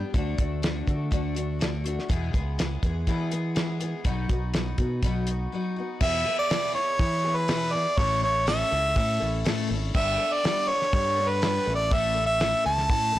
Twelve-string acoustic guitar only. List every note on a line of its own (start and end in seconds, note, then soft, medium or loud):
0.00 0.13 G3 soft
0.00 0.14 B3 soft
0.00 0.14 D4 soft
0.00 0.14 G4 medium
0.14 0.39 D3 medium
0.14 0.39 A3 medium
0.14 0.38 D4 medium
0.14 0.36 F#4 medium
0.37 0.62 A3 soft
0.37 0.63 D4 soft
0.37 0.63 F#4 soft
0.62 0.87 D3 medium
0.62 0.88 A3 medium
0.62 0.87 D4 medium
0.62 0.85 F#4 medium
0.87 1.10 A3 soft
0.87 1.11 D4 soft
0.87 1.12 F#4 soft
1.11 1.36 D3 medium
1.11 1.36 A3 medium
1.11 1.36 D4 medium
1.11 1.33 F#4 medium
1.35 1.59 A3 soft
1.35 1.60 D4 soft
1.35 1.60 F#4 medium
1.59 1.85 D3 medium
1.59 1.85 A3 medium
1.59 1.85 D4 medium
1.59 1.83 F#4 medium
1.84 2.10 A3 soft
1.84 2.10 D4 medium
1.84 2.09 F#4 medium
2.08 2.34 E2 medium
2.08 2.34 B2 medium
2.08 2.34 E3 medium
2.08 2.34 G#3 medium
2.08 2.33 B3 medium
2.08 2.32 G#4 medium
2.33 2.57 E3 soft
2.33 2.58 G#3 medium
2.33 2.59 B3 soft
2.33 2.58 G#4 medium
2.58 2.83 E3 medium
2.58 2.84 G#3 medium
2.58 2.83 B3 medium
2.58 2.82 G#4 medium
2.83 3.07 E3 soft
2.83 3.07 G#3 soft
2.83 3.08 B3 soft
2.83 3.08 G#4 medium
3.07 3.32 E2 medium
3.07 3.32 B2 medium
3.07 3.32 E3 medium
3.07 3.32 G#3 medium
3.07 3.31 B3 medium
3.07 3.30 G#4 medium
3.31 3.53 E3 soft
3.31 3.55 G#3 soft
3.31 3.56 B3 medium
3.31 3.56 G#4 medium
3.55 3.80 E3 medium
3.55 3.80 G#3 medium
3.55 3.80 B3 medium
3.55 3.79 G#4 medium
3.80 4.05 E3 soft
3.80 4.05 G#3 soft
3.80 4.04 B3 medium
3.80 4.05 G#4 medium
4.04 4.30 B2 medium
4.04 4.30 F#3 medium
4.04 4.30 B3 medium
4.04 4.29 D#4 medium
4.04 4.28 F#4 medium
4.29 4.53 B3 soft
4.29 4.54 D#4 soft
4.29 4.54 F#4 medium
4.53 4.79 F#3 medium
4.53 4.79 B3 medium
4.53 4.78 D#4 medium
4.53 4.77 F#4 medium
4.78 5.03 B3 soft
4.78 5.04 D#4 soft
4.78 5.03 F#4 soft
5.03 5.28 B2 medium
5.03 5.28 F#3 medium
5.03 5.28 B3 medium
5.03 5.28 D#4 medium
5.03 5.26 F#4 medium
5.27 5.52 B3 soft
5.27 5.53 D#4 soft
5.27 5.52 F#4 soft
5.52 5.77 F#3 medium
5.52 5.78 B3 medium
5.52 5.77 D#4 medium
5.52 5.75 F#4 medium
5.76 6.01 B3 soft
5.76 6.02 D#4 soft
5.76 6.01 F#4 medium
6.01 6.26 E2 medium
6.01 6.26 B2 medium
6.01 6.27 E3 medium
6.01 6.26 B3 medium
6.01 6.25 E4 medium
6.01 6.24 G#4 medium
6.25 6.51 E3 soft
6.25 6.51 B3 soft
6.25 6.51 E4 soft
6.25 6.50 G#4 soft
6.51 6.76 E2 medium
6.51 6.76 B2 medium
6.51 6.76 E3 medium
6.51 6.75 B3 medium
6.51 6.75 E4 medium
6.51 6.73 G#4 medium
6.75 6.98 E3 soft
6.75 6.99 B3 soft
6.75 7.00 E4 soft
6.75 7.00 G#4 medium
6.99 7.24 E3 medium
6.99 7.25 B3 medium
6.99 7.24 E4 medium
6.99 7.23 G#4 medium
7.24 7.48 E3 soft
7.24 7.48 B3 soft
7.24 7.49 E4 soft
7.24 7.49 G#4 medium
7.49 7.73 E2 medium
7.49 7.74 B2 medium
7.49 7.74 E3 medium
7.49 7.73 B3 medium
7.49 7.72 E4 medium
7.49 7.71 G#4 medium
7.73 7.98 E3 soft
7.73 7.99 B3 soft
7.73 7.98 E4 soft
7.73 7.98 G#4 medium
7.98 8.23 A2 medium
7.98 8.23 A3 medium
7.98 8.23 C#4 medium
7.98 8.22 E4 medium
7.98 8.21 A4 medium
8.22 8.46 C#4 soft
8.22 8.46 E4 soft
8.22 8.47 A4 medium
8.46 8.71 A2 medium
8.46 8.72 A3 medium
8.46 8.72 C#4 medium
8.46 8.71 E4 medium
8.46 8.70 A4 medium
8.71 8.96 C#4 soft
8.71 8.97 E4 soft
8.71 8.96 A4 medium
8.96 9.21 A3 medium
8.96 9.21 C#4 medium
8.96 9.20 E4 medium
8.96 9.19 A4 medium
9.20 9.44 C#4 medium
9.20 9.45 E4 medium
9.20 9.45 A4 medium
9.44 9.70 A2 medium
9.44 9.70 A3 medium
9.44 9.70 C#4 medium
9.44 9.69 E4 medium
9.44 9.67 A4 loud
9.69 9.94 C#4 soft
9.69 9.95 E4 medium
9.69 9.94 A4 medium
9.94 10.19 G3 medium
9.94 10.18 B3 medium
9.94 10.19 D4 medium
9.94 10.17 A4 medium
10.18 10.43 B3 medium
10.18 10.42 D4 soft
10.18 10.43 A4 medium
10.43 10.68 G3 medium
10.43 10.68 B3 medium
10.43 10.69 D4 medium
10.43 10.67 A4 medium
10.68 10.93 B3 soft
10.68 10.92 D4 soft
10.68 10.93 A4 medium
10.92 11.17 G3 medium
10.92 11.17 B3 medium
10.92 11.18 D4 medium
10.92 11.15 A4 medium
11.16 11.42 B3 soft
11.16 11.41 D4 soft
11.16 11.42 A4 medium
11.42 11.67 G3 medium
11.42 11.67 B3 medium
11.42 11.67 D4 medium
11.42 11.65 A4 medium
11.66 11.91 C#4 medium
11.66 11.91 E4 soft
11.66 11.91 A4 medium
11.91 12.16 A2 medium
11.91 12.16 A3 medium
11.91 12.17 C#4 medium
11.91 12.16 E4 medium
11.91 12.14 A4 medium
12.15 12.40 C#4 soft
12.15 12.40 E4 soft
12.15 12.40 A4 medium
12.40 12.65 A2 medium
12.40 12.65 A3 medium
12.40 12.65 C#4 medium
12.40 12.65 E4 medium
12.40 12.63 A4 medium
12.64 12.88 C#4 soft
12.64 12.89 E4 soft
12.64 12.89 A4 soft
12.89 13.14 A3 medium
12.89 13.14 C#4 medium
12.89 13.13 E4 medium
12.89 13.11 A4 medium
13.12 13.19 C#4 soft
13.12 13.19 E4 soft
13.12 13.19 A4 medium